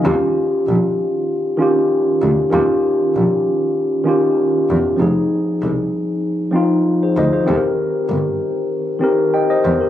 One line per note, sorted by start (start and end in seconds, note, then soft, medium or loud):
0.02 0.13 D#2 loud
0.02 0.79 D#3 medium
0.02 0.80 C#4 medium
0.02 0.81 F4 medium
0.07 0.82 G4 medium
0.67 0.75 A#1 medium
1.57 2.15 D#3 medium
1.57 2.16 C#4 medium
1.57 2.17 F4 medium
1.62 2.17 G4 medium
2.22 2.30 D2 medium
2.50 2.61 D#2 loud
2.50 3.27 D#3 medium
2.50 3.28 C#4 medium
2.50 3.29 F4 medium
2.55 3.29 G4 loud
3.15 3.23 A#1 medium
4.04 4.62 D#3 medium
4.04 4.63 C#4 medium
4.04 4.64 F4 medium
4.08 4.64 G4 medium
4.69 4.77 E2 medium
4.96 5.74 F3 medium
4.96 5.75 C4 medium
4.96 5.76 D#4 medium
5.00 5.08 F1 loud
5.00 5.76 G#4 medium
5.62 5.70 C2 medium
6.51 6.91 F3 medium
6.51 6.91 C4 medium
6.51 6.92 D#4 medium
6.56 6.93 F4 medium
7.03 7.16 G#4 medium
7.03 7.16 C5 medium
7.17 7.25 D2 medium
7.17 7.32 C5 medium
7.17 7.34 D#5 medium
7.33 7.63 G#4 medium
7.33 7.63 C5 medium
7.45 7.56 D#2 loud
7.45 8.22 D#3 medium
7.45 8.23 C4 medium
7.45 8.24 G4 medium
7.50 7.56 A4 medium
7.56 8.28 A#4 medium
8.10 8.18 G1 medium
8.99 9.38 D#3 medium
8.99 9.39 C4 medium
8.99 9.33 G4 medium
9.04 9.34 A#4 loud
9.34 9.49 D#5 medium
9.34 9.50 G5 medium
9.50 9.63 C5 medium
9.50 9.63 D#5 medium
9.64 9.72 E2 medium
9.64 9.80 C5 medium
9.81 9.89 G4 medium
9.81 9.89 A#4 medium